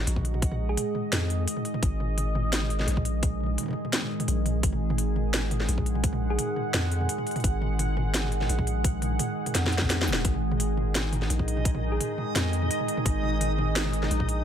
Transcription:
Already playing: D#3 G#3 G#4 D#5
0.07 A#1, closed hi-hat
0.16 kick, mid tom
0.19 mid tom
0.21 mid tom
0.23 closed hi-hat, mid tom
0.26 mid tom
0.29 mid tom
0.32 mid tom
0.34 mid tom
0.42 kick, closed hi-hat
0.52 mid tom
0.69 G#4
0.77 closed hi-hat, mid tom
0.95 mid tom
1.12 F2, snare, closed hi-hat, mid tom
1.30 closed hi-hat
1.48 closed hi-hat
1.57 mid tom
1.65 closed hi-hat
1.74 mid tom
1.83 G#1, kick, closed hi-hat
2.00 mid tom
2.18 closed hi-hat, mid tom
2.35 mid tom
2.53 snare, closed hi-hat
2.62 mid tom
2.70 closed hi-hat
2.79 snare, mid tom
2.82 snare
2.84 snare
2.87 A#1, snare, closed hi-hat
2.89 snare
2.92 snare
2.94 kick, snare, mid tom
3.05 closed hi-hat
3.23 kick, closed hi-hat, mid tom
3.40 mid tom
3.44 mid tom
3.46 mid tom
3.58 closed hi-hat, mid tom
3.61 mid tom
3.63 mid tom
3.66 mid tom
3.68 mid tom
3.71 mid tom
3.73 mid tom
3.85 mid tom
3.93 snare, closed hi-hat
4.02 mid tom
4.20 closed hi-hat, mid tom
4.28 A#1, closed hi-hat
4.46 closed hi-hat, mid tom
4.63 G#1 F#5, kick, closed hi-hat
4.73 mid tom
4.90 mid tom
4.98 closed hi-hat
5.16 mid tom
5.34 snare, closed hi-hat, mid tom
5.51 closed hi-hat, mid tom
5.60 snare
5.69 A#1, closed hi-hat
5.78 kick, mid tom
5.86 closed hi-hat
5.95 mid tom
6.04 kick, closed hi-hat
6.13 mid tom
6.30 G#4
6.39 closed hi-hat, mid tom
6.56 mid tom
6.74 F2, snare, closed hi-hat, mid tom
6.91 closed hi-hat
7.01 mid tom
7.09 closed hi-hat
7.18 mid tom
7.27 closed hi-hat
7.31 closed hi-hat
7.36 closed hi-hat, mid tom
7.40 closed hi-hat
7.44 G#1, kick, closed hi-hat
7.62 mid tom
7.79 closed hi-hat, mid tom
7.97 mid tom
8.14 snare, closed hi-hat
8.24 mid tom
8.32 closed hi-hat
8.41 snare, mid tom
8.49 A#1, closed hi-hat
8.59 kick, mid tom
8.67 closed hi-hat
8.84 kick, closed hi-hat, mid tom
9.02 closed hi-hat, mid tom
9.19 closed hi-hat, mid tom
9.46 closed hi-hat, mid tom
9.55 F2, snare, closed hi-hat
9.64 snare, mid tom
9.72 closed hi-hat
9.78 kick, snare, mid tom
9.90 snare, closed hi-hat
10.02 snare
10.07 D#1, closed hi-hat, mid tom
10.10 snare, mid tom
10.13 mid tom
10.16 mid tom
10.19 mid tom
10.22 G#1 D#4 D#5, kick, closed hi-hat, mid tom
10.34 mid tom
10.52 mid tom
10.60 closed hi-hat
10.77 mid tom
10.95 snare, closed hi-hat, mid tom
11.13 closed hi-hat, mid tom
11.22 snare
11.30 A#1, closed hi-hat
11.39 kick, mid tom
11.48 closed hi-hat
11.57 mid tom
11.65 kick, closed hi-hat
11.75 mid tom
11.92 G#4
12.01 closed hi-hat, mid tom
12.18 mid tom
12.35 F2, snare, closed hi-hat, mid tom
12.53 closed hi-hat
12.62 mid tom
12.71 closed hi-hat
12.80 mid tom
12.88 closed hi-hat
12.97 mid tom
13.06 G#1, kick, closed hi-hat
13.23 mid tom
13.41 closed hi-hat, mid tom
13.58 mid tom
13.76 snare, closed hi-hat
13.85 mid tom
13.93 closed hi-hat
14.03 snare, mid tom
14.11 A#1, closed hi-hat
14.20 kick, mid tom
14.29 closed hi-hat

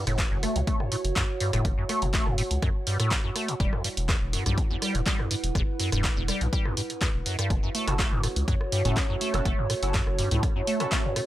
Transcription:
Already playing: E4 F#4 B4 C#5 F#5
0.07 F#1 A2, cross-stick, closed hi-hat
0.19 E2, kick, clap, closed hi-hat
0.31 F#1 F#2
0.43 A3, cross-stick, open hi-hat
0.56 C#2 A2, closed hi-hat
0.67 A3, kick, closed hi-hat
0.80 F#2, cross-stick
0.92 A2, open hi-hat
1.04 F#1, closed hi-hat
1.16 F#2, kick, cross-stick, clap, closed hi-hat
1.40 G2, open hi-hat
1.53 F#1 A2, cross-stick, closed hi-hat
1.65 F#1 E2, kick, closed hi-hat
1.78 F#2
1.89 A3, cross-stick, open hi-hat
2.02 F#1 A2, closed hi-hat
2.14 A3, kick, clap, closed hi-hat
2.26 F#1 F#2, cross-stick
2.38 A2, open hi-hat
2.51 C#2, closed hi-hat
2.62 F#2, kick, cross-stick, closed hi-hat
2.87 G2, open hi-hat
3.00 A2, cross-stick, closed hi-hat
3.11 E2, kick, clap, closed hi-hat
3.24 F#2
3.36 A3, cross-stick, open hi-hat
3.48 A2, closed hi-hat
3.60 E1 G3 E4, kick, closed hi-hat
3.73 E2, cross-stick
3.84 G2, open hi-hat
3.97 E1 B4, closed hi-hat
4.09 E2, kick, cross-stick, clap, closed hi-hat
4.22 E1
4.33 F#2, open hi-hat
4.46 B1 G2, cross-stick, closed hi-hat
4.58 D2, kick, closed hi-hat
4.70 E2
4.82 G3, cross-stick, open hi-hat
4.95 E1 G2, closed hi-hat
5.06 G3, kick, clap, closed hi-hat
5.19 E2, cross-stick
5.31 G2, open hi-hat
5.44 E1, closed hi-hat
5.55 E1 E2, kick, cross-stick, closed hi-hat
5.79 F#2, open hi-hat
5.92 E1 G2, cross-stick, closed hi-hat
6.04 D2, kick, clap, closed hi-hat
6.17 E1 E2
6.28 G3, cross-stick, open hi-hat
6.41 B1 G2, closed hi-hat
6.53 G3, kick, closed hi-hat
6.65 E2, cross-stick
6.77 G2, open hi-hat
6.90 closed hi-hat
7.01 E2, kick, cross-stick, clap, closed hi-hat
7.14 E1
7.26 F#2, open hi-hat
7.39 G2, cross-stick, closed hi-hat
7.50 F#1 E2 F#4 C#5, kick, cross-stick, closed hi-hat
7.63 F#2 C#5
7.75 A3, open hi-hat
7.87 F#1 A2 C#4 E4 F#4 A4, cross-stick, closed hi-hat
7.99 A3, kick, clap, closed hi-hat
8.12 F#1 F#2
8.23 A2, cross-stick, open hi-hat
8.36 C#2, closed hi-hat
8.48 F#2, kick, closed hi-hat
8.61 cross-stick
8.72 G2, open hi-hat
8.85 F#1 A2 C#4 E4 F#4 A4, closed hi-hat
8.96 E2, kick, cross-stick, clap, closed hi-hat
9.09 F#2
9.21 A3, open hi-hat
9.34 F#1 A2 C#4 E4 F#4 A4, cross-stick, closed hi-hat
9.45 F#1 A3, kick, closed hi-hat
9.58 F#2
9.70 A2, cross-stick, open hi-hat
9.83 F#1 C#4 E4 F#4 A4, closed hi-hat
9.94 F#2, kick, clap, closed hi-hat
10.07 F#1, cross-stick
10.19 G2, open hi-hat
10.31 C#2 A2, closed hi-hat
10.43 E2, kick, cross-stick, closed hi-hat
10.56 F#2
10.67 A3, open hi-hat
10.80 A2 C#4 E4 F#4 A4, cross-stick, closed hi-hat
10.92 A3, kick, clap, closed hi-hat
11.05 F#2
11.16 A2, cross-stick, open hi-hat

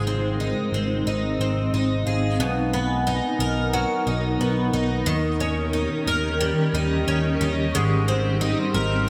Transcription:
Already playing: G#1 G#2 G#3 C4 D#4 G#4
0.07 C4
0.34 A#4
0.40 D#4
0.72 G#1 C4
1.06 G#1 D#4
1.18 D#5
1.39 G#1 C4
1.73 G#1 D#4
2.05 G#1 G#4 F5
2.39 B1 B2 B3 D#4 A#4
2.73 B3
2.87 G#5
3.07 D#4
3.39 B1 A#4
3.69 A#5
3.73 F#3 C#6
4.07 B1 D#4
4.40 B1 B3
4.73 B1 D#4
5.06 D#2 D#3 C#4 G4
5.40 C#4
5.73 D#4
6.07 D#2 A#4
6.41 G3
6.73 D#2 D#4
7.07 D#2 C#4
7.41 D#2 D#4
7.71 G#1 G#2 G3 C4 C#6
8.08 C4
8.41 D#4
8.59 C6
8.74 G#1 A#4

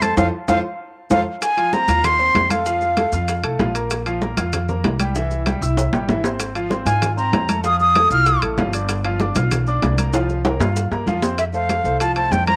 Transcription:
Already playing: F2
0.02 A3 A4 C5 A5, high conga, high timbale, maracas
0.17 F2 F4 A4 C5 F5, low bongo, high conga, high timbale, maracas
0.48 F2 F4 A4 C5 F5, low bongo, high conga, high timbale, maracas
1.10 F2 F4 A4 C5 F5, low bongo, high conga, high timbale, maracas
1.41 G#5, high bongo, high conga, high timbale, maracas
1.57 F3 F4 F5, high conga, high timbale, maracas
1.73 C4 C5 A#5 C6, high bongo, high conga, low timbale, maracas
1.88 D#2 F4 F5 F6, high conga, high timbale, maracas
2.04 C6, high bongo, high conga, low conga, high timbale, maracas
2.19 C4 C5 C6, high conga, maracas
2.35 F2, high bongo, low bongo, high conga, high timbale, low timbale, maracas
2.50 A3 A4 F5 A5, high conga, high timbale, maracas
2.66 F3 F4 F5, high bongo, high conga, maracas
2.81 high bongo, high conga, maracas
2.97 A3 A4 A5, high bongo, high conga, high timbale, low timbale, maracas
3.12 F2 F4 F5 F6, high conga, maracas
3.28 high bongo, high conga, high timbale, maracas
3.43 C2 A3 A4 A5, high bongo, high conga, high timbale, maracas
3.59 A#1 F3 F4 F5, high bongo, low bongo, high conga, low timbale, maracas
3.75 A#3 A#4 A#5, high bongo, high timbale, maracas
3.90 high bongo, high conga, high timbale, maracas
4.06 F3 F4 F5, high conga, high timbale, maracas
4.22 A#3 A#4 A#5, high bongo, high conga, low timbale, maracas
4.37 F2 F4 F5 F6, high conga, high timbale, maracas
4.53 high bongo, high conga, low conga, high timbale, maracas
4.69 A#3 A#4 A#5, high conga, low conga, maracas
4.84 C2, high bongo, low bongo, high conga, high timbale, low timbale, maracas
5.00 G3 G4 G5, high conga, high timbale, maracas
5.15 E3 E4 E5, high bongo, high conga, maracas
5.31 high bongo, high conga, maracas
5.46 G3 G4 G5, high bongo, high conga, high timbale, low timbale, maracas
5.61 C2 E4 E5 E6, high conga, maracas
5.77 high bongo, high conga, high timbale, maracas
5.93 A1 G3 G4 G5, high bongo, high conga, low timbale, maracas
6.08 G#1 E3 E4 E5, high bongo, low bongo, high conga, low timbale, maracas
6.24 C4 C5 C6, high bongo, low timbale, maracas
6.40 high bongo, high conga, high timbale, maracas
6.55 F3 F4 F5, high conga, high timbale, maracas
6.70 C4 C5 C6, high bongo, high conga, low timbale, maracas
6.85 G#2 F4 F5 G#5 F6, high conga, high timbale, maracas
7.02 high bongo, high conga, low conga, high timbale, maracas
7.17 C4 C5 A#5 C6, high conga, maracas
7.32 F2, high bongo, low bongo, high conga, high timbale, low timbale, maracas
7.49 A3 A4 A5, high conga, high timbale, maracas
7.64 F3 F4 F5 D#6, high bongo, high conga, maracas
7.80 D#6, high bongo, high conga, maracas
7.95 A3 A4 A5, high bongo, high conga, high timbale, low timbale, maracas
8.10 C2 F4 F5 F6, high conga, maracas
8.26 high bongo, high conga, high timbale, maracas
8.42 A1 A3 A4 A5, high bongo, high conga, high timbale, maracas
8.57 G1 F3 F4 F5, high bongo, low bongo, high conga, low timbale, maracas
8.73 D4 D5 D6, high bongo, high timbale, maracas
8.89 high bongo, high conga, high timbale, maracas
9.04 F3 F4 F5, high conga, high timbale, maracas
9.20 D4 D5 D6, high bongo, high conga, low timbale, maracas
9.35 B1 F4 F5 F6, high conga, high timbale, maracas
9.51 high bongo, high conga, low conga, high timbale, maracas
9.67 D4 D5 D6, high conga, maracas
9.82 C2, high bongo, low bongo, high conga, high timbale, low timbale, maracas
9.98 A#3 A#4 A#5, high conga, high timbale, maracas
10.13 F3 F4 F5, high bongo, high conga, high timbale, maracas
10.29 high bongo, high conga, maracas
10.45 A#3 A#4 A#5, high bongo, high conga, high timbale, maracas
10.60 G2 F4 F5 F6, high conga, low timbale, maracas
10.76 high bongo, high conga, maracas
10.92 A#3 A#4 A#5, high bongo, high conga, low timbale, maracas
11.06 F2 F3 F4 F5, high bongo, low bongo, high conga, maracas
11.23 C4 C5 C6, high bongo, low timbale, maracas
11.38 E5, high bongo, high conga, high timbale, maracas
11.54 A3 A4 C5 F5, high bongo, high conga, maracas
11.69 high bongo, high conga, high timbale, low timbale, maracas
11.84 C2 A3 A4 C5, maracas
12.00 F3 F4 F5 A5, high bongo, high conga, high timbale, maracas
12.16 A3 A4 C5 A5, high bongo, high conga, high timbale, maracas
12.31 F2 G5, high bongo, low bongo, high conga, low timbale, maracas
12.47 A#3 A#4 C5 A#5, high bongo, high conga, high timbale, maracas

